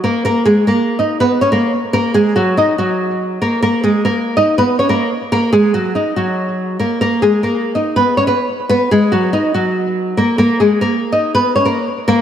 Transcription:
0.04 A#3 A#4
0.25 A#3 A#4
0.45 G#3 G#4
0.67 A#3 A#4
0.99 D#4 D#5
1.20 B3 B4
1.41 C#4 C#5
1.52 A#3 A#4
1.93 A#3 A#4
2.14 G#3 G#4
2.36 F#3 F#4
2.57 D#4 D#5
2.78 F#3 F#4
3.42 A#3 A#4
3.62 A#3 A#4
3.83 G#3 G#4
4.05 A#3 A#4
4.37 D#4 D#5
4.58 B3 B4
4.79 C#4 C#5
4.89 A#3 A#4
5.32 A#3 A#4
5.53 G#3 G#4
5.74 F#3 F#4
5.95 D#4 D#5
6.16 F#3 F#4
6.79 A#3 A#4
7.01 A#3 A#4
7.22 G#3 G#4
7.43 A#3 A#4
7.75 D#4 D#5
7.96 B3 B4
8.17 C#4 C#5
8.27 B3 B4
8.69 B3 B4
8.91 G#3 G#4
9.12 F#3 F#4
9.33 D#4 D#5
9.54 F#3 F#4
10.17 A#3 A#4
10.38 A#3 A#4
10.60 G#3 G#4
10.81 A#3 A#4
11.12 D#4 D#5
11.35 B3 B4
11.55 C#4 C#5
11.65 A#3 A#4
12.08 A#3 A#4

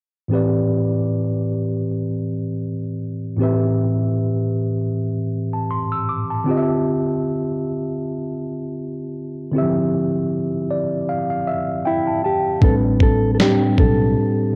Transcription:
0.28 A2 E3 C4
0.33 G4 B4 D5
3.36 A2 E3 C4
3.40 G4 B4 E5
5.53 A5
5.71 C6
5.92 E6
6.09 D6
6.31 A5
6.44 D3 C4 F4
6.49 G4 D#5
6.58 E5
9.51 D3 C4 E4
9.56 G4 E5
9.61 F3
10.71 D5
11.09 F5
11.30 F5
11.47 E5
11.85 E4 G5
12.07 A5
12.24 G4 A5
12.61 A1 A2 G3 C4 D4 A4 B4, kick
13.00 A4, kick
13.35 A2 A4
13.39 G3 C4 D4 G4, finger snap, snare
13.78 B1 A4, kick

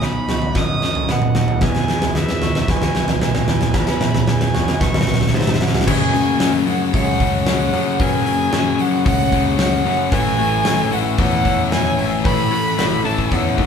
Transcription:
Already playing: B2 D#3 F#3 B3 C#4 F#4 B4
0.02 B1 D#4 B5, snare
0.29 F#4, snare, floor tom
0.42 floor tom
0.55 F#2 D#4 D#5 D#6, kick, snare, floor tom
0.82 F#3, snare
0.95 floor tom
1.08 B3 D#5 F#5, snare, mid tom
1.22 floor tom, mid tom
1.35 D#2 F#3, snare
1.48 floor tom
1.61 E2 E3 F#3 G#3 B3 B4 G#5, kick, snare, floor tom
1.75 snare
1.88 E3 G#4, snare
2.02 snare, floor tom
2.15 E2 B3 E5, snare
2.28 snare
2.42 F#4, snare, floor tom
2.55 snare, floor tom
2.68 B1 B3 B4 G#5, kick, snare, floor tom
2.82 snare
2.95 E3, snare
3.08 snare, floor tom
3.21 G#3 B4 G#5, snare, mid tom
3.35 snare, floor tom, mid tom
3.48 E2 E3, snare
3.61 snare, floor tom
3.74 E2 C#4 B4 B5, kick, snare, floor tom
3.87 snare
4.01 E3 G#4, snare, mid tom
4.14 snare, floor tom
4.27 E2 B3 G#5, snare
4.41 snare
4.54 F#4, snare, floor tom
4.68 snare, floor tom
4.80 B1 B3 B4 C#6, kick, snare, floor tom
4.94 snare, mid tom
5.01 snare
5.07 E3, snare, floor tom
5.14 snare
5.21 snare, floor tom
5.28 snare
5.33 G#2 G#3 B4 E5, snare, mid tom
5.41 snare
5.47 snare, floor tom, mid tom
5.54 snare
5.61 F#2 E3 F#5, snare
5.68 snare
5.74 snare, floor tom
5.81 snare
5.87 F#2 C#3 F#3 A3 C#4 G#4 B4 C#5 G#5, kick, crash
6.13 F#2 C#3 F#3 G#4, open hi-hat
6.40 F#2 C#3 F#3 C#4, snare, open hi-hat
6.67 F#2 C#3 F#3 F#5, open hi-hat
6.93 C#2 F#2 C#3 F#3 A3 C#5 F#5, kick, open hi-hat
7.20 F#2 C#3 F#3 C#4, kick, open hi-hat
7.46 F#2 C#3 F#3 C#5 F#5, snare, open hi-hat
7.73 F#2 C#3 F#3 C#4, open hi-hat
7.99 F#2 C#3 F#3 B4 G#5, kick, open hi-hat
8.26 F#2 C#3 F#3 G#4, open hi-hat
8.52 F#2 C#3 F#3 C#4, snare, open hi-hat
8.78 F#2 C#3 F#3 F#5, open hi-hat
9.05 C#2 F#2 C#3 F#3 A3 C#5 F#5, kick, open hi-hat
9.32 F#2 C#3 F#3 C#4, kick, open hi-hat
9.58 F#2 C#3 F#3 C#5 F#5, snare, open hi-hat
9.85 F#2 C#3 F#3 C#4, open hi-hat
10.11 A1 A2 E3 A3 F#4 B4 G#5, kick, open hi-hat
10.38 A2 E3 A3 F#4 A4, open hi-hat
10.65 A1 A2 E3 A3 C#4, snare, open hi-hat
10.91 A2 E3 A3 F#5, open hi-hat
11.18 E2 A2 E3 A3 C#5 F#5, kick, open hi-hat
11.44 A2 E3 A3 C#4, kick, open hi-hat
11.71 A2 E3 A3 C#5 G#5, snare, open hi-hat
11.98 A1 A2 E3 A3 C#4, open hi-hat
12.24 A1 A2 E3 A3 B4 B5, kick, open hi-hat
12.51 A2 E3 A3 F#4 A4, open hi-hat
12.78 A1 A2 E3 A3 C#4, snare, open hi-hat
13.04 A2 E3 A3 A5, open hi-hat
13.18 kick
13.31 E2 A2 E3 A3 C#5 F#5, kick, open hi-hat
13.57 D#2 A2 E3 A3 C#4, kick, open hi-hat

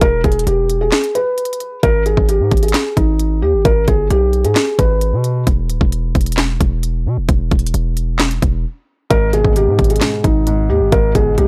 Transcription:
0.01 E1 A#4, kick, closed hi-hat
0.24 E1 G#4, kick, closed hi-hat
0.32 closed hi-hat
0.39 closed hi-hat
0.47 E1 G4, closed hi-hat
0.70 closed hi-hat
0.81 G#4
0.92 snare, clap, closed hi-hat
1.04 closed hi-hat
1.15 B4, closed hi-hat
1.38 closed hi-hat
1.45 closed hi-hat
1.53 closed hi-hat
1.60 closed hi-hat
1.83 G#1 A#4, kick, closed hi-hat
2.06 G#4, closed hi-hat
2.17 G#1, kick
2.29 G4, closed hi-hat
2.40 G#2
2.51 G#1, kick, closed hi-hat
2.57 closed hi-hat
2.63 G#4, closed hi-hat
2.68 closed hi-hat
2.74 snare, clap, closed hi-hat
2.97 G#1 D#4, kick, closed hi-hat
3.20 closed hi-hat
3.42 D#2 G4
3.54 G#1
3.65 G#1 A#4, kick, closed hi-hat
3.88 G1 G#4, kick, closed hi-hat
4.10 B1 G4, closed hi-hat
4.33 closed hi-hat
4.45 G#2 G#4, closed hi-hat
4.56 snare, clap, closed hi-hat
4.79 G#1 B4, kick, closed hi-hat
5.01 closed hi-hat
5.13 B2
5.24 closed hi-hat
5.47 E1, kick, closed hi-hat
5.70 D#1, closed hi-hat
5.81 E1, kick
5.92 closed hi-hat
6.15 E1, kick, closed hi-hat
6.21 closed hi-hat
6.26 closed hi-hat
6.32 closed hi-hat
6.37 snare, clap, closed hi-hat
6.61 E1, kick, closed hi-hat
6.83 closed hi-hat
7.06 B2
7.17 E1
7.29 E1, kick, closed hi-hat
7.51 E1, kick, closed hi-hat
7.59 closed hi-hat
7.67 closed hi-hat
7.74 E1, closed hi-hat
7.97 closed hi-hat
8.19 snare, clap, closed hi-hat
8.31 closed hi-hat
8.42 E1, kick, closed hi-hat
9.10 G#1 G#2 A#4, kick, closed hi-hat
9.33 B2 G#4, closed hi-hat
9.45 G#1, kick
9.56 G#2 G4, closed hi-hat
9.67 G#2
9.79 G#1, kick, closed hi-hat
9.84 closed hi-hat
9.90 G#4, closed hi-hat
9.96 closed hi-hat
10.01 G#2, snare, clap, closed hi-hat
10.24 G#1 D#4, kick, closed hi-hat
10.47 G#2, closed hi-hat
10.70 D#2 G4
10.81 G#1
10.92 G#1 G#2 A#4, kick, closed hi-hat
11.15 G1 B2 G#4, kick, closed hi-hat
11.38 B1 G#2 G4, closed hi-hat

